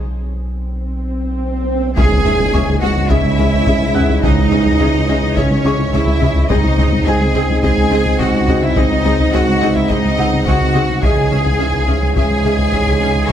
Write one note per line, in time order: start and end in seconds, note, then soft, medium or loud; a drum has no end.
0.00 1.96 B1 medium
0.00 swell medium
1.96 6.46 C#2 medium
1.96 2.47 C#2 medium
1.96 2.06 C#2 loud
1.96 6.46 G#2 medium
1.96 6.46 E3 medium
1.96 6.46 G#3 medium
1.96 2.05 C#4 medium
1.96 6.46 C#4 medium
1.96 2.78 G#4 loud
1.96 2.05 G#4 medium
1.96 2.04 E5 medium
1.96 2.78 G#5 medium
1.96 taiko loud
1.96 impact medium
2.12 2.20 C#2 medium
2.25 2.34 C#2 medium
2.25 2.33 C#4 medium
2.25 2.33 G#4 medium
2.25 2.33 E5 medium
2.25 taiko low medium
2.40 2.49 C#2 medium
2.40 taiko low medium
2.53 3.04 C#2 medium
2.53 2.63 C#2 medium
2.53 2.62 C#4 medium
2.53 2.61 G#4 medium
2.53 2.61 E5 medium
2.53 4.19 C#6 medium
2.69 2.77 C#2 medium
2.81 2.91 C#2 medium
2.81 2.90 C#4 medium
2.81 3.10 F#4 medium
2.81 2.90 G#4 medium
2.81 2.89 E5 medium
2.81 3.10 F#5 medium
2.97 3.05 C#2 medium
3.09 3.60 C#2 medium
3.09 3.19 C#2 medium
3.09 3.18 C#4 medium
3.09 4.23 E4 medium
3.09 3.18 G#4 medium
3.09 3.17 E5 medium
3.09 4.21 E5 medium
3.09 taiko medium
3.26 3.34 C#2 medium
3.37 3.48 C#2 medium
3.37 3.46 C#4 medium
3.37 3.47 G#4 medium
3.37 3.45 E5 medium
3.54 3.62 C#2 medium
3.66 3.76 C#2 loud
3.66 4.17 C#2 medium
3.66 3.75 C#4 medium
3.66 3.75 G#4 medium
3.66 3.74 E5 medium
3.66 taiko medium
3.82 3.90 C#2 medium
3.94 4.04 C#3 medium
3.94 4.03 C#4 medium
3.94 4.03 G#4 medium
3.94 4.03 E5 medium
3.94 5.61 F#5 soft
3.94 5.61 F#6 medium
3.94 taiko low medium
4.10 4.18 C#2 medium
4.23 4.32 C#2 loud
4.23 4.74 C#2 medium
4.23 4.31 C#4 medium
4.23 5.34 D#4 loud
4.23 4.31 G#4 medium
4.23 5.34 D#5 medium
4.23 4.32 E5 medium
4.23 taiko loud
4.38 4.47 C#2 medium
4.51 4.61 C#2 medium
4.51 4.59 C#4 medium
4.51 4.59 G#4 medium
4.51 4.60 E5 medium
4.51 taiko low medium
4.66 4.75 C#2 medium
4.66 taiko low soft
4.80 4.89 C#2 medium
4.80 5.30 C#2 medium
4.80 4.88 C#4 medium
4.80 4.88 G#4 medium
4.80 4.88 E5 medium
4.94 5.02 C#2 medium
5.08 5.17 C#2 medium
5.08 5.16 C#4 medium
5.08 5.16 G#4 medium
5.08 5.17 E5 medium
5.23 5.31 C#2 medium
5.36 5.45 C#2 medium
5.36 5.87 C#2 medium
5.36 5.45 C#4 medium
5.36 5.93 C#4 medium
5.36 5.44 G#4 medium
5.36 5.93 C#5 medium
5.36 5.44 E5 medium
5.36 taiko medium
5.51 5.59 C#2 medium
5.65 5.73 C#2 medium
5.65 5.73 C#4 medium
5.65 5.73 G#4 medium
5.65 5.73 E5 medium
5.65 7.31 C#6 medium
5.79 5.87 C#2 medium
5.93 6.01 C#2 medium
5.93 6.43 C#2 medium
5.93 6.01 C#4 medium
5.93 6.49 E4 medium
5.93 6.01 G#4 medium
5.93 6.01 E5 medium
5.93 6.50 E5 medium
5.93 taiko medium
6.07 6.16 C#2 medium
6.22 6.30 C#3 medium
6.22 6.30 C#4 medium
6.22 6.30 G#4 medium
6.22 6.30 E5 medium
6.22 taiko low medium
6.36 6.44 C#2 medium
6.49 10.98 C#2 medium
6.49 6.58 C#2 medium
6.49 7.00 C#2 medium
6.49 10.86 G#2 medium
6.49 10.86 G#3 medium
6.49 10.98 C4 medium
6.49 6.58 C4 medium
6.49 10.99 D#4 medium
6.49 7.05 D#4 medium
6.49 6.58 G#4 medium
6.49 7.05 D#5 medium
6.49 6.58 D#5 medium
6.49 taiko loud
6.64 6.72 C#2 medium
6.78 6.87 C#2 medium
6.78 6.86 C4 medium
6.78 6.86 G#4 medium
6.78 6.87 D#5 medium
6.78 taiko low medium
6.92 7.01 C#2 medium
6.92 taiko low soft
7.06 7.15 C#2 medium
7.06 7.57 C#2 medium
7.06 7.15 C4 medium
7.06 7.15 G#4 medium
7.06 7.62 G#4 medium
7.06 8.73 G#4 soft
7.06 7.14 D#5 medium
7.06 7.62 G#5 medium
7.06 8.73 G#5 medium
7.21 7.29 C#2 medium
7.35 7.43 C#2 medium
7.35 7.43 C4 medium
7.35 7.43 G#4 medium
7.35 7.43 D#5 medium
7.50 7.58 C#2 medium
7.63 7.72 C#2 medium
7.63 8.13 C#2 medium
7.63 7.71 C4 medium
7.63 8.19 G#4 loud
7.63 7.71 G#4 medium
7.63 7.72 D#5 medium
7.63 8.18 G#5 medium
7.63 taiko medium
7.78 7.86 C#2 medium
7.91 8.00 C#2 medium
7.91 8.00 C4 medium
7.91 8.00 G#4 medium
7.91 8.00 D#5 medium
8.06 8.14 C#2 medium
8.19 8.28 C#2 medium
8.19 8.70 C#2 medium
8.19 8.28 C4 medium
8.19 8.62 F#4 medium
8.19 8.28 G#4 medium
8.19 8.28 D#5 medium
8.19 8.62 F#5 medium
8.19 taiko medium
8.34 8.43 C#2 medium
8.48 8.57 C#3 medium
8.48 8.56 C4 medium
8.48 8.57 G#4 medium
8.48 8.56 D#5 medium
8.48 taiko low medium
8.62 8.71 C#2 medium
8.62 8.76 E4 medium
8.62 8.76 E5 medium
8.76 8.85 C#2 loud
8.76 9.27 C#2 medium
8.76 8.84 C4 medium
8.76 9.33 D#4 loud
8.76 8.84 G#4 medium
8.76 8.84 D#5 medium
8.76 9.33 D#5 medium
8.76 taiko loud
8.92 9.00 C#2 medium
9.05 9.14 C#2 medium
9.05 9.13 C4 medium
9.05 9.13 G#4 medium
9.05 9.13 D#5 medium
9.20 9.28 C#2 medium
9.33 9.83 C#2 medium
9.33 9.43 C#2 medium
9.33 9.41 C4 medium
9.33 9.75 F#4 loud
9.33 9.41 G#4 medium
9.33 9.42 D#5 medium
9.33 9.75 F#5 medium
9.48 9.56 C#2 medium
9.61 9.71 C#2 medium
9.61 9.69 C4 medium
9.61 11.27 D#4 soft
9.61 9.69 G#4 medium
9.61 11.02 D#5 medium
9.61 9.70 D#5 medium
9.75 9.85 C#2 medium
9.75 9.90 E4 medium
9.75 9.89 E5 medium
9.89 10.39 C#2 medium
9.89 9.99 C#2 medium
9.89 9.97 C4 medium
9.89 10.46 D#4 medium
9.89 9.98 G#4 medium
9.89 10.46 D#5 medium
9.89 9.97 D#5 medium
9.89 taiko medium
10.05 10.13 C#2 medium
10.18 10.27 C#2 medium
10.18 10.26 C4 medium
10.18 10.26 G#4 medium
10.18 10.26 D#5 medium
10.18 11.84 F#5 medium
10.33 10.41 C#2 medium
10.46 10.96 C#2 medium
10.46 10.55 C#2 medium
10.46 10.55 C4 medium
10.46 11.02 F#4 medium
10.46 10.55 G#4 medium
10.46 10.54 D#5 medium
10.46 11.03 F#5 medium
10.46 taiko medium
10.61 10.69 C#2 medium
10.74 10.83 C#3 medium
10.74 10.83 C4 medium
10.74 10.83 G#4 medium
10.74 10.82 D#5 medium
10.89 10.98 C#2 medium
11.02 13.32 C#2 medium
11.02 11.53 C#2 medium
11.02 11.12 C#2 medium
11.02 13.32 G#2 medium
11.02 13.32 C#3 medium
11.02 13.32 E3 medium
11.02 13.32 G#3 medium
11.02 11.11 C#4 medium
11.02 12.15 G#4 medium
11.02 11.11 G#4 medium
11.02 12.69 D#5 medium
11.02 11.10 E5 medium
11.02 12.14 G#5 medium
11.02 taiko loud
11.18 11.26 C#2 medium
11.31 11.40 C#2 medium
11.31 11.39 C#4 medium
11.31 11.39 G#4 medium
11.31 11.39 E5 medium
11.46 11.54 C#2 medium
11.59 12.09 C#2 medium
11.59 11.68 C#2 medium
11.59 11.67 C#4 medium
11.59 11.67 G#4 medium
11.59 11.68 E5 medium
11.74 11.82 C#2 medium
11.88 11.96 C#2 medium
11.88 11.96 C#4 medium
11.88 11.96 G#4 medium
11.88 11.96 E5 medium
12.02 12.11 C#2 soft
12.16 12.24 C#2 medium
12.16 12.66 C#2 medium
12.16 12.24 C#4 medium
12.16 12.24 G#4 medium
12.16 13.27 G#4 loud
12.16 12.25 E5 medium
12.16 13.27 G#5 medium
12.16 taiko medium
12.30 12.39 C#2 medium
12.44 12.53 C#2 medium
12.44 12.52 C#4 medium
12.44 12.52 G#4 medium
12.44 12.52 E5 medium
12.58 12.67 C#2 medium
12.72 12.81 C#2 medium
12.72 13.22 C#2 medium
12.72 12.81 C#4 medium
12.72 12.81 G#4 medium
12.72 12.80 E5 medium
12.72 taiko medium
12.87 12.95 C#2 medium
13.01 13.09 C#3 medium
13.01 13.10 C#4 medium
13.01 13.10 G#4 soft
13.01 13.09 E5 soft
13.16 13.24 C#2 medium
13.28 13.32 C#2 medium
13.28 13.32 G#4 medium
13.28 13.32 C#5 loud
13.28 13.32 C#6 medium